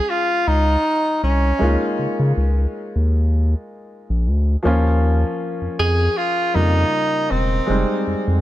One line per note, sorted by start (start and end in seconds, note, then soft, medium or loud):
0.00 1.56 G#3 medium
0.00 1.57 C#4 medium
0.00 1.58 F4 medium
0.00 0.11 G#4 loud
0.00 1.56 C5 medium
0.10 0.49 F4 medium
0.47 0.77 C#2 medium
0.47 1.23 D#4 medium
1.23 1.52 C2 medium
1.23 1.95 C#4 medium
1.59 1.77 C#2 loud
1.59 4.59 G#3 medium
1.59 4.60 A#3 medium
1.59 4.61 D#4 medium
1.63 4.62 F4 medium
1.99 2.07 C#3 soft
2.19 2.33 C#3 medium
2.37 2.66 C#2 loud
2.95 3.54 D#2 loud
4.09 4.28 A#1 medium
4.27 4.56 D2 medium
4.63 5.24 D#2 loud
4.63 6.50 F3 medium
4.63 6.50 A#3 medium
4.63 6.51 C#4 medium
4.67 6.52 F4 medium
5.61 5.68 F2 soft
5.79 6.08 F2 medium
5.79 6.19 G#4 loud
6.17 6.56 F4 medium
6.54 6.84 F2 medium
6.54 7.69 C#3 soft
6.54 7.68 G3 soft
6.54 7.68 A#3 soft
6.54 7.32 D#4 loud
6.54 7.69 F4 soft
7.31 7.60 E1 medium
7.31 8.06 C4 medium
7.66 7.85 F1 loud
7.66 8.41 G#3 medium
7.66 8.41 C4 medium
7.66 8.41 D#4 medium
7.70 8.41 G3 medium
8.07 8.15 F2 soft
8.27 8.41 F2 medium